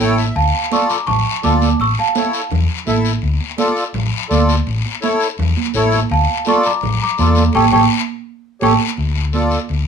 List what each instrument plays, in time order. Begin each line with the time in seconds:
0.00 fingered electric bass A1, accordion E4 A4 C#5 G5, high conga, short guiro
0.18 accordion E5, short guiro
0.36 fingered electric bass D2, celesta F5 A5, high conga, long guiro
0.54 high conga
0.72 accordion F4 A4 D5, celesta A5 C#6, high conga, short guiro
0.90 celesta A#5 D6, short guiro
1.07 fingered electric bass A1, celesta A5 C#6, low conga, long guiro
1.43 fingered electric bass D2, accordion F4 A4 D5, celesta A5 D6, high conga, low conga, short guiro
1.62 high conga, short guiro
1.80 fingered electric bass A1, celesta C#6 E6, high conga, long guiro
1.98 celesta F5 A5, high conga
2.15 accordion E4 A4 C#5, high conga, short guiro
2.33 short guiro
2.50 fingered electric bass E2, low conga, long guiro
2.87 fingered electric bass A1, accordion E4 A4 E5, high conga, short guiro
3.05 short guiro
3.22 fingered electric bass D2, high conga, long guiro
3.40 high conga
3.58 accordion F4 A4 D5, high conga, short guiro
3.76 short guiro
3.94 fingered electric bass A1, low conga, long guiro
4.29 fingered electric bass D2, accordion F4 A4 D5, high conga, short guiro
4.49 short guiro
4.67 fingered electric bass A1, high conga, long guiro
4.86 high conga
5.02 accordion E4 A4 C#5, high conga, short guiro
5.20 short guiro
5.38 fingered electric bass E2, low conga, long guiro
5.57 high conga
5.74 fingered electric bass A1, accordion E4 A4 C#5, high conga, short guiro
5.92 high conga, short guiro
6.10 fingered electric bass D2, celesta F5 A5, high conga, long guiro
6.29 high conga
6.45 accordion F4 A4 D5, celesta A5 C#6, high conga, short guiro
6.63 celesta A#5 D6, short guiro
6.81 fingered electric bass A1, low conga, long guiro
7.02 celesta A#5 D6
7.18 fingered electric bass E2, accordion F4 A4 D5, high conga, short guiro
7.35 high conga, short guiro
7.53 fingered electric bass A1, accordion G4 A4 C#5, celesta G5 A5 C#6, high conga, long guiro
7.71 fingered electric bass A1, accordion G4 A4 C#5, celesta G5 A5 C#6, high conga, long guiro
8.61 fingered electric bass A1, accordion G4 A4 C#5, celesta G5 A5 C#6, high conga, long guiro
8.97 fingered electric bass D2, long guiro
9.33 accordion F4 A4 D5, high conga, short guiro
9.51 short guiro
9.69 fingered electric bass D2, long guiro